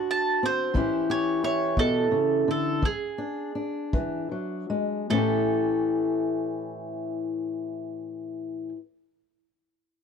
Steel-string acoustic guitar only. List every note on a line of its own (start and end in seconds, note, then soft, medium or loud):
0.00 0.35 D3 medium
0.00 0.42 C4 medium
0.00 0.72 D4 medium
0.00 0.75 F#4 medium
0.43 0.72 C4 medium
0.74 1.35 A2 medium
0.74 2.81 E3 medium
0.74 2.78 C#4 medium
0.74 1.42 E4 medium
0.74 1.09 G4 medium
1.10 2.79 G4 medium
1.44 2.79 E4 medium
1.77 2.11 B2 medium
2.11 2.47 C#3 medium
2.48 2.83 D3 medium
2.82 3.48 E3 medium
3.18 3.54 D4 medium
3.55 5.05 D4 medium
3.93 4.31 E3 medium
4.31 4.69 F#3 medium
4.70 5.10 G#3 medium
5.10 8.72 A2 medium
5.10 8.73 E3 medium
5.10 8.75 C#4 medium
5.15 8.77 E4 medium
5.15 8.80 G4 medium